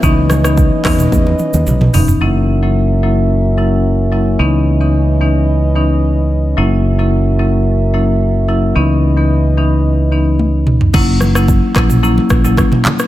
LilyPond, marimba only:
\new Staff \with { instrumentName = "Marimba" } { \time 4/4 \key fis \mixolydian \tempo 4 = 110 <e b cis' dis'>8. <e b cis' dis'>16 r8 <e b cis' dis'>16 r4. r16 <e b cis' dis'>16 r16 | <fis ais cis' e'>8. <fis ais cis' e'>8. <fis ais cis' e'>8 r8 <fis ais cis' e'>16 r8. <fis ais cis' e'>16 r16 | <e b cis' dis'>8. <e b cis' dis'>8. <e b cis' dis'>8 r8 <e b cis' dis'>16 r4 r16 | <fis ais cis' e'>8. <fis ais cis' e'>8. <fis ais cis' e'>8 r8 <fis ais cis' e'>16 r8. <fis ais cis' e'>16 r16 |
<e b cis' dis'>8. <e b cis' dis'>8. <e b cis' dis'>8 r8 <e b cis' dis'>16 r4 r16 | <fis ais cis' e'>8. <fis ais cis' e'>16 r8 <fis ais cis' e'>16 r16 <fis ais cis' e'>8. <fis ais cis' e'>16 r4 | }